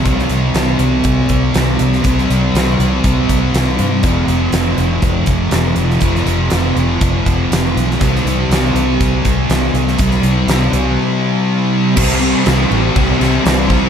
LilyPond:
<<
  \new Staff \with { instrumentName = "Distorted electric guitar" } { \clef bass \time 4/4 \key f \lydian \tempo 4 = 121 <c g c'>1 | <c g c'>1 | <f, c f>1 | <f, c f>1 |
<c g c'>1 | <c g c'>1 | <c g c'>8 <g c'>8 <c g c'>4. <g c'>8 <c g c'>8 <g c'>8 | }
  \new Staff \with { instrumentName = "Fingered electric bass" } { \clef bass \time 4/4 \key f \lydian c,8 c,8 c,8 c,8 c,8 c,8 c,8 c,8 | c,8 c,8 c,8 c,8 c,8 c,8 c,8 g,8 | f,,8 f,,8 f,,8 f,,8 f,,8 f,,8 f,,8 f,,8 | f,,8 f,,8 f,,8 f,,8 f,,8 f,,8 f,,8 b,,8 |
c,8 c,8 c,8 c,8 c,8 c,8 c,8 c,8 | c,8 c,8 c,8 c,8 r2 | c,4 c,8 a,,8 c,8 c,8 c,4 | }
  \new DrumStaff \with { instrumentName = "Drums" } \drummode { \time 4/4 <hh bd>16 sn16 hh8 <hh sn>8 hh8 <hh bd>8 <hh bd>8 <hh sn>8 hh16 sn16 | <hh bd>16 sn16 hh8 <hh sn>8 hh8 <hh bd>8 <hh bd>8 <hh sn>8 hh8 | <hh bd>8 hh8 <hh sn>8 hh8 <hh bd>8 <hh bd>8 <hh sn>8 hh16 sn16 | <hh bd>16 sn16 hh8 <hh sn>8 hh8 <hh bd>8 <hh bd>8 <hh sn>8 hh16 sn16 |
<hh bd>16 sn16 hh8 <hh sn>8 hh8 <hh bd>8 <hh bd>8 <hh sn>8 hh16 sn16 | <hh bd>16 sn16 hh8 <hh sn>8 hh8 r4 r4 | <cymc bd>8 cymc8 <cymc sn>8 cymc8 <cymc bd>8 <cymc sn>8 <cymc sn>8 <cymc bd>8 | }
>>